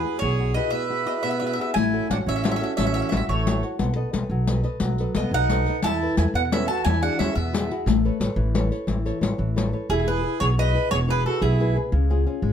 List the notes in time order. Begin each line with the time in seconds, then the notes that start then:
Already playing: G#4 B4
0.04 E4 F#4 G#4
0.19 B1 B2 G#4 C#5
0.40 E4 F#4 G#4
0.54 E4 F#4 G#4 B4 D#5
0.70 B2 B4 E5
0.90 E4 F#4 G#4
1.06 B3 E4 F#4 G#4 D#5
1.23 B2 B3 E5
1.31 E5
1.40 E4 F#4 G#4 E5
1.47 E5
1.53 E5
1.59 E4 F#4 G#4 E5
1.74 A1 A3 E4 G#5, riq
1.93 F#4 A4 C#5
2.10 A1 D4 F#4 A4 C#5 F#5, riq
2.26 A1 E3 C#4 E5
2.36 E5
2.44 F#4 A4 C#5 E5, riq
2.51 E5
2.56 E5
2.61 F#4 A4 C#5 E5, riq
2.77 A1 E3 C#4 E5, riq
2.86 E5
2.94 F#4 A4 C#5 E5
3.02 E5
3.09 A1 F#4 E5, riq
3.14 A4 C#5 E5
3.28 A1 E3 A3 C#5
3.47 F#4 A4 C#5, riq
3.63 F#4 A4 C#5, riq
3.79 B1 B3, riq
3.96 A4 B4 D#5
4.13 B1 A4 B4 D#5, riq
4.30 B1 F#3
4.47 A4 B4 D#5, riq
4.63 A4 B4 D#5, riq
4.80 B1 F#3, riq
4.98 A4 B4 D#5, riq
5.15 B1 B3 A4 B4 D#5, riq
5.31 B1 F#3 D#4 F#5
5.49 A4 B4 D#5, riq
5.66 A4 B4 D#5, riq
5.82 E2 E3 E4 A5, riq
6.02 E4 A4 B4
6.17 E2 E4 A4 B4 G#5, riq
6.34 E2 B2 B3 F#5
6.52 C#4 E4 A4 B4 E5, riq
6.68 E4 F#4 A4 B4 A5, riq
6.84 E2 E3 E4 G#5, riq
7.03 D4 E4 F#4 G#4 F#5
7.19 E2 C#4 E4 F#4 G#4 E5, riq
7.35 E2 B2 B3 E5
7.53 E4 F#4 G#4, riq
7.71 E4 F#4 G#4, riq
7.86 A1 A3, riq
8.05 A4 B4 C#5
8.20 A1 A4 B4 C#5, riq
8.36 A1 E3
8.55 A4 B4 C#5, riq
8.71 A4 B4 C#5, riq
8.87 A1 E3, riq
9.06 A4 B4 C#5, riq
9.21 A1 A4 B4 C#5, riq
9.38 A1 E3
9.56 A4 B4 C#5, riq
9.73 A4 B4 C#5
9.89 E1 E3 E4 G#4
10.07 E4 G#4 B4
10.23 E4 G#4 B4
10.40 B1 B2 G#4 C#5
10.58 E4 G#4 B4 D#5
10.74 E4 G#4 B4
10.91 E1 B2 G#4 C#5
11.08 E4 G#4 B4
11.25 E4 F#4 G#4 A4 B4
11.41 B1 B2 E4 G#4
11.60 E4 G#4 B4
11.76 E4 G#4 B4
11.92 C#2 C#3
12.10 C#4 F4 G#4
12.26 C#4 F4 G#4
12.42 G#1 G#3